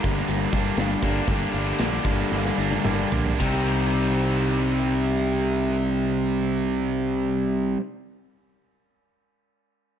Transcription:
Already playing: distorted electric guitar G2 D3 G3 A#3 D4, overdriven electric guitar G2 D3 G3 A#3 D4
0.04 fingered electric bass G1, steel-string acoustic guitar G3 A#3 D4 G4, kick, closed hi-hat
0.17 snare
0.28 fingered electric bass G1, steel-string acoustic guitar G3 A#3 D4, closed hi-hat
0.32 steel-string acoustic guitar G4
0.53 fingered electric bass G1, steel-string acoustic guitar G3 A#3 D4 G4, kick, closed hi-hat
0.77 fingered electric bass G1, steel-string acoustic guitar G2 D3 G3 A#3 D4 G4, snare, closed hi-hat
1.02 fingered electric bass G1, overdriven electric guitar G2 D3 G3 A#3 D4, steel-string acoustic guitar A#3 D4 G4, kick, closed hi-hat
1.07 steel-string acoustic guitar G3
1.28 fingered electric bass G1, steel-string acoustic guitar G2 D3 G3 A#3 D4 G4, kick, closed hi-hat
1.53 fingered electric bass G1, steel-string acoustic guitar A#3 D4 G4, closed hi-hat
1.57 steel-string acoustic guitar G3
1.79 fingered electric bass A#1, steel-string acoustic guitar G2 D3 G3 A#3 D4 G4, snare, closed hi-hat
2.05 fingered electric bass G1, steel-string acoustic guitar A#3 D4 G4, kick, closed hi-hat
2.09 steel-string acoustic guitar G3
2.18 snare
2.32 fingered electric bass G1, steel-string acoustic guitar G3 A#3 D4 G4, snare
2.45 snare
2.58 fingered electric bass G1, steel-string acoustic guitar G3 A#3 D4 G4
2.71 high tom
2.84 fingered electric bass G1, steel-string acoustic guitar G2 D3 G3 A#3 D4 G4, mid tom
3.11 fingered electric bass A#1, steel-string acoustic guitar G3 A#3 D4 G4, floor tom
3.26 floor tom
3.35 steel-string acoustic guitar C3
3.39 fingered electric bass C2, overdriven electric guitar C3 G3 C4, steel-string acoustic guitar D#3, distorted electric guitar G3, kick, ride
3.44 steel-string acoustic guitar C4, overdriven electric guitar D#4
3.49 steel-string acoustic guitar D#4
3.53 steel-string acoustic guitar G4

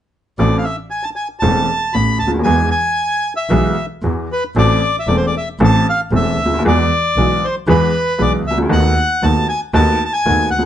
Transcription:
0.39 double bass A1, upright piano A1 A2 E3 A3 C4 A4, bandoneon D5
0.58 bandoneon F5
0.64 bandoneon E5
0.91 bandoneon G#5
1.03 bandoneon A5
1.16 bandoneon G#5
1.40 upright piano E1 E2 E3 A3 C4 A4, double bass E1, bandoneon A5
1.93 upright piano A1 A2, double bass A1, bandoneon B5
2.19 double bass D2, bandoneon A5
2.27 upright piano C#2
2.34 upright piano D2
2.39 upright piano D#2
2.44 upright piano E2 E3 G#3 B3 G#4, double bass E2, bandoneon G#5
2.71 bandoneon G#5
3.36 bandoneon E5
3.50 double bass B1, upright piano B1 B2 E3 G#3 B3 G#4
4.03 double bass E2, upright piano E2 E3
4.32 bandoneon B4
4.55 double bass A1, upright piano A1 A2 E3 A3 C4 A4, bandoneon D5
4.99 bandoneon E5
5.07 double bass E1, upright piano E1 E2 E3 A3 C4 A4, bandoneon D5
5.17 bandoneon C5
5.26 bandoneon D5
5.37 bandoneon E5
5.60 double bass A1, upright piano A1 A2 E3 A3 C4 A4
5.65 bandoneon A5
5.89 bandoneon F5
6.11 double bass E1, upright piano E1 E2 E3 A3 C4 A4
6.16 bandoneon E5
6.38 double bass D2
6.46 upright piano C#2
6.54 upright piano D2
6.59 upright piano D#2
6.64 double bass E2, upright piano E2 E3 G#3 B3 G#4, bandoneon D5
7.16 double bass B1, upright piano B1 B2 E3 G#3 B3 G#4
7.44 bandoneon C5
7.67 double bass E2, upright piano E2 E3 G#3 B3 G#4, bandoneon B4
8.19 upright piano B1 B2 E3 G#3 B3 G#4, double bass B1, bandoneon D5
8.44 double bass C#2, bandoneon E5
8.51 upright piano C2
8.58 upright piano C#2
8.62 upright piano D2
8.69 upright piano D#2 D#3 A3 B3 F#4, double bass D#2, bandoneon F#5
9.23 upright piano D#2 D#3 A3 B3 F#4, double bass D#2, bandoneon A5
9.49 bandoneon G#5
9.73 upright piano D#2 D#3 A3 B3 F#4, double bass D#2, bandoneon A5
10.05 bandoneon A5
10.13 bandoneon G#5
10.25 double bass D#2, upright piano D#2 D#3 A3 B3 F#4
10.51 double bass D2, bandoneon F#5
10.59 upright piano C#2

